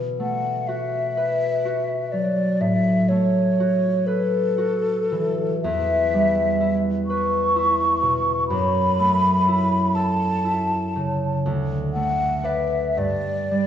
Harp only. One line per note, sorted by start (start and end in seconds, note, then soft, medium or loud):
0.00 2.65 B2 soft
0.00 0.19 A3 soft
0.00 1.16 B4 soft
0.20 3.09 A3 soft
0.68 1.64 F#4 soft
1.17 4.06 B4 soft
1.65 3.59 F#4 soft
2.13 5.66 F#3 soft
2.61 5.66 A2 soft
3.10 5.66 A3 soft
3.60 4.57 F#4 soft
4.07 7.09 B4 soft
4.58 5.67 F#4 soft
5.12 5.67 E3 soft
5.64 8.54 E2 medium
6.14 8.54 G3 soft
6.61 7.55 E4 soft
7.10 8.54 B4 soft
7.56 9.47 E4 soft
8.02 8.53 B2 soft
8.50 11.50 F#2 medium
8.99 11.94 A3 soft
9.48 10.44 E4 soft
9.96 13.03 A4 soft
10.45 13.03 E4 soft
10.96 11.49 C#3 soft
11.46 13.03 D2 soft
11.96 13.03 A3 soft
12.44 13.67 B4 soft
12.44 13.67 D5 soft
12.97 13.67 G2 soft
13.51 13.67 G3 soft